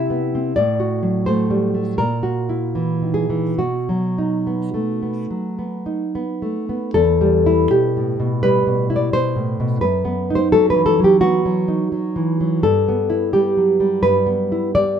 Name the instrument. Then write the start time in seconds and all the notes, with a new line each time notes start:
nylon-string guitar
Already playing: C3 C4 E4 G4 E5
0.10 B3
0.35 C4
0.56 A2 D5
0.80 F#4
1.03 F#3
1.26 A3 C5
1.50 G3
1.74 A3
1.98 A#2 A#4
2.23 F#4
2.49 E4
2.75 E3
3.02 D#3
3.14 G#4
3.30 E3
3.59 B2 F#4
3.89 F#3
4.18 D#4
4.47 B3
4.74 A3
5.02 B3
5.31 F#3
5.59 B3
5.86 D#4
6.15 B3
6.42 A3
6.69 B3
6.94 E2 A4
7.21 G3
7.46 E4
7.71 B2 G4
7.97 A2
8.20 B2
8.43 G3 B4
8.67 B2
8.90 E4
8.96 D5
9.13 B2 C5
9.36 A2
9.60 B2
9.81 F#2 B4
10.05 B3
10.30 D#4
10.35 C5
10.52 F#3 A4
10.70 B4
10.76 E3
10.86 A4
11.00 F#3
11.04 G4
11.21 B3 F#4
11.45 F#3
11.68 D#4
11.92 F#3
12.16 E3
12.40 F#3
12.63 G2 A4
12.88 B3
13.10 E4
13.33 G3 G4
13.57 F#3
13.80 G3
14.03 G2 B4
14.26 B3
14.52 E4
14.75 G3 D5